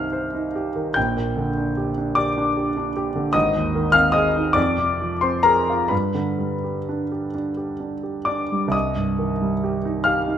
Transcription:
0.00 0.92 C2 medium
0.00 0.99 G2 soft
0.00 0.76 D#3 soft
0.00 0.99 C4 soft
0.00 0.34 D#4 soft
0.00 0.56 G4 soft
0.00 0.13 C5 soft
0.00 0.99 D#5 medium
0.00 0.92 F5 medium
0.00 0.99 D#6 medium
0.00 0.95 F6 medium
0.13 0.47 C5 soft
0.34 0.68 D#4 soft
0.56 0.88 G4 soft
0.76 0.96 D#3 soft
0.94 3.31 A#1 medium
0.94 2.14 G5 medium
0.94 2.17 G6 medium
1.16 1.49 A#2 soft
1.37 1.70 D3 soft
1.57 1.90 D4 soft
1.77 2.10 G4 soft
1.98 2.29 D4 soft
2.15 2.49 G4 medium
2.15 2.91 D5 medium
2.15 2.94 D6 medium
2.38 2.68 D4 medium
2.57 2.88 G4 soft
2.77 3.08 D4 soft
2.97 3.27 G4 medium
3.15 3.35 D3 medium
3.33 4.53 G#1 medium
3.33 3.91 D#5 medium
3.33 3.94 D#6 loud
3.55 3.87 D#2 soft
3.75 4.07 D#3 medium
3.92 4.28 C4 medium
3.92 4.13 F5 medium
3.92 4.14 F6 loud
4.12 4.49 G#4 medium
4.12 4.53 D#5 medium
4.12 4.55 D#6 medium
4.36 4.57 D#4 medium
4.53 5.87 F2 medium
4.53 5.17 D5 medium
4.53 5.21 D6 medium
4.78 5.13 C3 soft
5.02 5.37 F3 soft
5.21 5.59 C4 soft
5.21 5.44 C5 medium
5.21 5.45 C6 medium
5.43 5.82 G#4 medium
5.43 5.88 A#4 medium
5.43 5.90 A#5 loud
5.70 5.92 F4 soft
5.88 8.69 G2 medium
5.88 7.29 B4 medium
5.88 7.32 B5 medium
6.15 6.53 D3 soft
6.38 6.77 G3 soft
6.64 7.02 G4 soft
6.89 7.26 D4 soft
7.12 7.48 G4 soft
7.35 7.71 D4 soft
7.57 7.94 G4 soft
7.80 8.18 D4 soft
8.03 8.41 G4 soft
8.25 8.65 D4 soft
8.25 8.70 D5 soft
8.25 8.72 D6 medium
8.52 8.74 G3 soft
8.68 10.38 C2 medium
8.68 10.04 D#6 medium
8.73 10.01 D#5 medium
8.96 9.32 G2 soft
9.19 9.54 D#3 soft
9.42 9.76 G3 soft
9.64 9.97 G4 soft
9.85 10.19 D#4 soft
10.04 10.38 G4 medium
10.04 10.38 F5 medium
10.04 10.38 F6 medium
10.28 10.38 D#4 soft

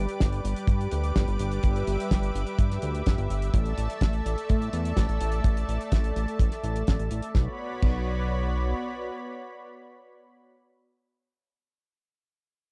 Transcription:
0.00 3.50 G3 medium
0.00 3.50 G4 medium
0.00 3.50 B4 medium
0.00 1.60 D5 medium
0.00 3.50 D6 medium
0.09 closed hi-hat soft
0.20 0.41 G1 medium
0.20 kick loud
0.20 snare loud
0.20 closed hi-hat medium
0.32 closed hi-hat soft
0.44 0.54 G1 medium
0.44 closed hi-hat medium
0.56 closed hi-hat medium
0.67 0.88 G2 medium
0.67 kick loud
0.67 closed hi-hat medium
0.81 closed hi-hat soft
0.91 1.12 D2 medium
0.91 closed hi-hat medium
1.04 closed hi-hat medium
1.16 1.26 G1 medium
1.16 kick loud
1.16 snare loud
1.16 closed hi-hat medium
1.28 1.38 G1 medium
1.28 closed hi-hat medium
1.39 1.60 G1 medium
1.39 closed hi-hat medium
1.52 closed hi-hat soft
1.63 1.84 G1 medium
1.63 7.31 E5 medium
1.63 kick loud
1.63 closed hi-hat medium
1.76 closed hi-hat soft
1.87 1.97 G1 medium
1.87 closed hi-hat medium
2.00 closed hi-hat medium
2.11 2.31 G1 medium
2.11 kick medium
2.11 snare loud
2.11 closed hi-hat medium
2.23 closed hi-hat medium
2.35 2.45 G1 medium
2.35 closed hi-hat medium
2.47 closed hi-hat soft
2.59 2.79 G2 medium
2.59 kick loud
2.59 closed hi-hat medium
2.71 snare soft
2.71 closed hi-hat medium
2.82 3.03 D2 medium
2.82 closed hi-hat medium
2.95 closed hi-hat medium
3.06 3.17 G1 medium
3.06 kick loud
3.06 snare loud
3.06 closed hi-hat medium
3.18 3.28 G1 medium
3.18 closed hi-hat medium
3.30 3.50 G1 medium
3.30 closed hi-hat medium
3.42 closed hi-hat soft
3.54 3.74 A1 loud
3.54 7.31 A3 medium
3.54 7.31 A4 medium
3.54 7.31 D5 medium
3.54 7.31 A5 medium
3.54 kick loud
3.54 closed hi-hat medium
3.66 closed hi-hat soft
3.78 3.88 A1 medium
3.78 closed hi-hat medium
3.90 closed hi-hat soft
4.01 4.21 A1 medium
4.01 kick medium
4.01 snare loud
4.01 closed hi-hat medium
4.13 closed hi-hat soft
4.26 4.35 A1 medium
4.26 closed hi-hat medium
4.38 closed hi-hat medium
4.49 4.70 A2 medium
4.49 kick loud
4.49 closed hi-hat medium
4.62 closed hi-hat medium
4.73 4.93 E2 medium
4.73 closed hi-hat medium
4.85 closed hi-hat medium
4.97 5.07 A1 medium
4.97 kick medium
4.97 snare loud
4.97 closed hi-hat medium
5.09 5.19 A1 medium
5.09 closed hi-hat soft
5.21 5.41 A1 medium
5.21 closed hi-hat loud
5.32 closed hi-hat soft
5.44 5.64 A1 medium
5.44 kick loud
5.44 closed hi-hat medium
5.57 closed hi-hat medium
5.68 5.78 A1 medium
5.68 closed hi-hat medium
5.81 closed hi-hat medium
5.92 6.12 A1 medium
5.92 kick medium
5.92 snare loud
5.92 closed hi-hat medium
6.04 closed hi-hat medium
6.16 6.26 A1 medium
6.16 closed hi-hat medium
6.28 closed hi-hat soft
6.39 6.50 A1 medium
6.39 kick loud
6.39 closed hi-hat medium
6.51 snare soft
6.51 closed hi-hat medium
6.64 6.84 A1 medium
6.64 closed hi-hat medium
6.76 closed hi-hat soft
6.87 6.98 A1 medium
6.87 kick loud
6.87 snare loud
6.87 closed hi-hat medium
6.99 7.09 A1 medium
6.99 closed hi-hat soft
7.11 7.21 A1 medium
7.11 closed hi-hat medium
7.22 closed hi-hat medium
7.35 7.48 B1 medium
7.35 10.54 B3 medium
7.35 10.54 F#4 medium
7.35 10.54 C#5 medium
7.35 10.54 D5 medium
7.35 10.54 B5 medium
7.35 kick loud
7.35 snare medium
7.82 8.74 B1 medium
7.82 kick loud
7.82 crash medium

